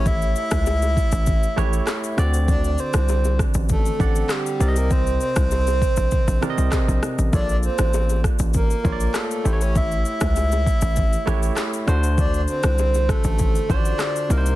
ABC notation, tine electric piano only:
X:1
M:4/4
L:1/16
Q:1/4=99
K:Dphr
V:1 name="Tine electric piano"
[A,=EG^c]4 z6 [A,EGc]4 [D,=C^Fd]2- | [D,C^Fd]4 z6 [D,Cd^f]4 [C,CBde]2- | [C,CBde]4 z6 [C,CBde]4- [C,CBde] z | [B,FA_d=d]6 z4 [B,F_d=d]4 [A,=EGc^c]2- |
[A,=EGc^c]4 z6 [A,EGc]4 [D,D^F=c]2- | [D,D^Fc]4 z6 [D,D=F^Fc]4 [C,B,EBc]2 |]